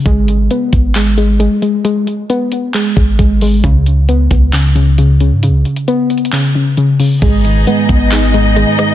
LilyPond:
<<
  \new Staff \with { instrumentName = "String section" } { \time 4/4 \key gis \minor \tempo 4 = 134 r1 | r1 | r1 | r1 |
<b dis' gis' dis''>1 | }
  \new Staff \with { instrumentName = "Synth pluck" } { \clef bass \time 4/4 \key gis \minor gis4 b4 gis8 gis8 gis8 gis8 | gis4 b4 gis8 gis8 gis8 gis8 | cis4 b4 cis8 cis8 cis8 cis8 | cis4 b4 cis8 cis8 cis8 cis8 |
gis4 b4 gis8 gis8 gis8 gis8 | }
  \new Staff \with { instrumentName = "Synth keys" } { \clef bass \time 4/4 \key gis \minor r1 | r1 | r1 | r1 |
gis,8 dis8 gis8 b8 dis'8 gis,8 dis8 gis8 | }
  \new Staff \with { instrumentName = "808-style bass" } { \clef bass \time 4/4 \key gis \minor gis,,4 r8 gis,,4.~ gis,,16 r8. | r2 r8 gis,,8 gis,,4 | cis,4. cis,2~ cis,16 gis,16~ | gis,32 cis,16. r2. r8 |
gis,,4 r8 gis,,4.~ gis,,16 r8. | }
  \new DrumStaff \with { instrumentName = "Drums" } \drummode { \time 4/4 <hh bd>8 hh8 hh8 <hh bd>8 <hc hh>8 hh8 hh8 hh8 | hh8 hh8 hh8 hh8 <hc hh>8 bd8 <hh bd>8 hho8 | <hh bd>8 hh8 hh8 <hh bd>8 <hc hh>8 hh8 hh8 hh8 | hh8 hh16 hh16 \tuplet 3/2 { hh16 r16 r16 hh16 hh16 hh16 } <hc hh>4 hh8 hho8 |
<cymc hh bd>8 hh8 hh8 <hh bd>8 <hc hh>8 hh8 hh8 <hh ss>8 | }
>>